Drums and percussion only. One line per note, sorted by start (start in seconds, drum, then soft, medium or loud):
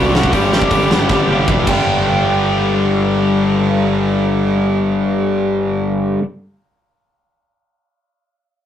0.15 snare loud
0.23 kick medium
0.33 kick medium
0.33 open hi-hat medium
0.53 snare loud
0.62 kick medium
0.70 kick medium
0.70 open hi-hat medium
0.91 snare loud
1.09 kick loud
1.09 snare medium
1.28 high tom medium
1.48 kick loud
1.48 mid tom medium
1.67 kick medium
1.67 crash medium